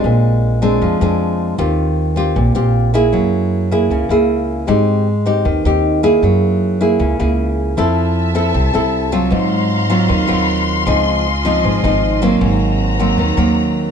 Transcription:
<<
  \new Staff \with { instrumentName = "String section" } { \time 4/4 \key aes \lydian \tempo 4 = 155 << { r1 | r1 | r1 | r1 |
r1 | a''1 | c'''1~ | c'''1 |
bes''1 | } \\ { r1 | r1 | r1 | r1 |
r1 | e''1 | <f'' bes''>1 | <f' ees''>1 |
<ges' c''>1 | } >> }
  \new Staff \with { instrumentName = "Nylon-string guitar" } { \time 4/4 \key aes \lydian << { <aes c' d'>4. <aes c' d'>4 <aes c' d'>4. | <c' f' g'>4. <c' f' g'>4 <c' f' g'>4 <bes e' aes'>8~ | <bes e' aes'>4. <ais e' gis'>4 <ais e' gis'>4. | <c' ees' g'>4 r8 <c' ees' g'>4 <c' ees' g'>4 <bes e' aes'>8~ |
<bes e' aes'>4. <ais e' gis'>4 <ais e' gis'>4. | <c' e' a'>4. <c' e' a'>4 <c' e' a'>4 <fis c' f'>8~ | <fis c' f'>4. <ges c' f'>4 <ges c' f'>4. | <f c' ees'>4 r8 <f c' ees'>4 <f c' ees'>4 <fis bes c'>8~ |
<fis bes c'>4. <ges bes c'>4 <ges bes c'>4. | } \\ { bes,2 f2 | ees2 bes,2 | fis2 cis2 | aes2 ees2 |
fis2 cis2 | f2 c2 | aes,2 ees2 | des2 aes,2 |
aes,2 ees2 | } >> }
  \new Staff \with { instrumentName = "Upright bass" } { \clef bass \time 4/4 \key aes \lydian bes,,2 f,8 f,4. | ees,2 bes,,8 bes,,4. | fis,2 cis,8 cis,4. | aes,2 ees,8 ees,4. |
fis,2 cis,8 cis,4. | f,2 c,8 c,4. | aes,2 ees,8 ees,4. | des,2 aes,,8 aes,,4. |
aes,,2 ees,8 ees,4. | }
>>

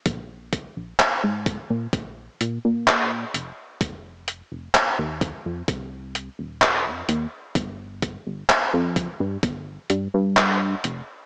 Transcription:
<<
  \new Staff \with { instrumentName = "Analog synth bass" } { \clef bass \time 4/4 \key f \dorian \tempo 4 = 64 bes,,8. bes,,16 r16 aes,16 r16 bes,16 bes,,16 r16 bes,16 bes,8. f,,16 r16 | f,,8. f,,16 r16 ees,16 r16 f,16 c,8. ees,,8 f,16 ees,16 r16 | g,,8. g,,16 r16 f,16 r16 g,16 g,,16 r16 g,16 g,8. f,,16 r16 | }
  \new DrumStaff \with { instrumentName = "Drums" } \drummode { \time 4/4 <hh bd>8 <hh bd>8 <hc hh>8 <hh bd>8 <hh bd>8 hh8 <hc hh>8 hh8 | <hh bd>8 hh8 <hc hh>8 <hh bd>8 <hh bd>8 hh8 <hc hh>8 hh8 | <hh bd>8 <hh bd>8 <hc hh>8 <hh bd>8 <hh bd>8 hh8 <hc hh>8 hh8 | }
>>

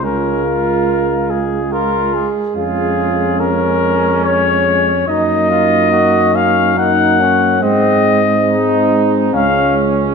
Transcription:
<<
  \new Staff \with { instrumentName = "Trumpet" } { \time 3/4 \key des \major \tempo 4 = 71 bes'4. aes'8 f'8 r8 | aes'4 bes'4 des''4 | ees''4. f''8 ges''4 | ees''4. r8 f''8 r8 | }
  \new Staff \with { instrumentName = "Flugelhorn" } { \time 3/4 \key des \major des'8 f'4 r8 bes'8 aes'8 | f'4 des'2 | ees'8 f'8 ges'8 des'8 ees'8 des'8 | c'8 r8 ees'4 des'4 | }
  \new Staff \with { instrumentName = "French horn" } { \time 3/4 \key des \major f'2~ f'8 r8 | des'2. | ees'2 ees'8 des'8 | c'2 des'4 | }
  \new Staff \with { instrumentName = "Euphonium" } { \clef bass \time 3/4 \key des \major aes2.~ | aes2. | bes2 bes4 | aes2 aes4 | }
  \new Staff \with { instrumentName = "Bass trombone" } { \clef bass \time 3/4 \key des \major des,2~ des,8 r8 | f,2. | ges,2. | aes,2 des,4 | }
>>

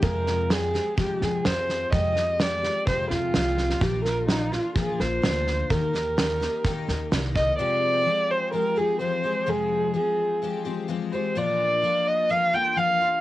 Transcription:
<<
  \new Staff \with { instrumentName = "Viola" } { \time 4/4 \key f \dorian \tempo 4 = 127 bes'4 aes'4 g'8 aes'8 c''4 | ees''4 d''4 c''8 f'4. | g'8 bes'8 ees'8 f'8 aes'8 c''4. | bes'2. r8 ees''8 |
d''4. c''8 bes'8 aes'8 c''4 | aes'4 aes'4. r4 c''8 | d''4. ees''8 f''8 g''8 f''4 | }
  \new Staff \with { instrumentName = "Twelve-string acoustic guitar" } { \time 4/4 \key f \dorian <f, c f aes c' g'>4 <f aes c' g'>8 <f aes c' g'>8 <f, c f aes c' g'>4 <f aes c' g'>4 | <f, c f aes c' g'>8 <f aes c' g'>8 <f aes c' g'>8 <f aes c' g'>8 <f, c f aes c' g'>4 <f aes c' g'>4 | <bes, f bes d' f'>4 <f bes d' f'>8 <bes d' f'>8 <bes, f bes d' f'>4 <f bes d' f'>4 | <ees bes ees' g'>8 <bes ees' g'>8 <ees bes ees' g'>8 <bes ees' g'>8 <ees bes ees' g'>4 <ees bes ees' g'>4 |
<f, c f aes c' g'>4 <f aes c' g'>4 <f aes c' g'>8 <f aes c' g'>8 <f aes c' g'>8 <f aes c' g'>8 | <f, c f aes c'>4 <f aes c'>4 <f aes c' g'>8 <f aes c' g'>8 <f aes c' g'>8 <f aes c' g'>8 | <bes, f bes d' f'>4 <f bes d' f'>4 <f bes d' f'>8 <bes d' f'>8 <f bes d' f'>8 <bes d' f'>8 | }
  \new Staff \with { instrumentName = "Upright bass" } { \clef bass \time 4/4 \key f \dorian f,2 r8 f,8 f,4 | f,2 r8 f,8 c,4 | bes,,2 r8 bes,,8 d,4 | ees,2 r8 ees,8 c,4 |
r1 | r1 | r1 | }
  \new DrumStaff \with { instrumentName = "Drums" } \drummode { \time 4/4 <bd sn>8 sn8 sn8 sn8 <bd sn>8 sn8 sn8 sn8 | <bd sn>8 sn8 sn8 sn8 <bd sn>8 sn8 sn8 sn16 sn16 | <bd sn>8 sn8 sn8 sn8 <bd sn>8 sn8 sn8 sn8 | <bd sn>8 sn8 sn8 sn8 <bd sn>8 sn8 sn8 <bd sn>8 |
r4 r4 r4 r4 | r4 r4 r4 r4 | r4 r4 r4 r4 | }
>>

